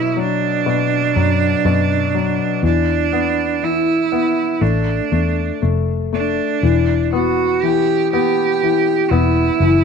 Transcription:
Already playing: B2 F#3 E4
0.17 F#3 D4
0.66 B2
1.16 F#2 F#3
1.65 F#2 B2
2.14 F#3
2.63 E2 E3 D4
3.13 B3
3.63 E3 E4
4.12 B3
4.61 A1 A3 D4
5.12 E2 A3
5.62 F1 A3
6.13 A3 D4
6.63 E1 E3
7.13 B3 F#4
7.62 E3 G4
8.12 B3 G4
8.63 E3
9.10 E1 B3 E4
9.60 F#1 E3

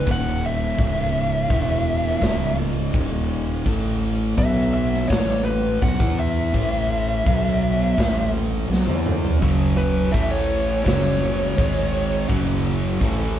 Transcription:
0.06 D#1 D#2 A#2 D#3, kick, crash
0.12 F#5
0.46 E5
0.79 C#1 C#2 G#2 C#3, kick, crash
1.50 E1 E2 B2 E3, kick, crash
2.07 snare
2.21 C#1 C#2 G#2 C#3, kick, snare, crash
2.93 D#1 D#2 A#2 D#3, kick, crash
3.65 A1 A2 E3 A3, kick, crash
4.37 B1 B2 F#3 B3 E5, kick, crash
4.74 E5
4.94 snare
5.09 A1 A2 E3 A3 C#5, kick, snare, crash
5.44 B4
5.81 B1 B2 F#3 F#5, kick, crash
5.99 E2 E3 B3 E4, kick
6.19 E5
6.54 A1 A2 E3 A3, kick, crash
7.24 B1 B2 F#3 B3, kick, crash
7.97 A1 A2 E3 A3, kick, snare, crash
8.69 B1 B2 F#3, snare
8.85 E2 E3 B3 E4, high tom
9.06 mid tom
9.25 floor tom
9.39 F#1 F#2 C#3 F#3, kick, crash
9.77 B4
10.12 A1 A2 E3 A3 E5, kick, crash
10.31 C#5
10.84 F#1 F#2 C#3 F#3 C#5, kick, crash
10.88 snare
11.57 G#1 G#2 D#3 G#3, kick, crash
12.29 F#1 F#2 C#3 F#3, kick, crash
13.00 A1 A2 E3 A3, kick, crash

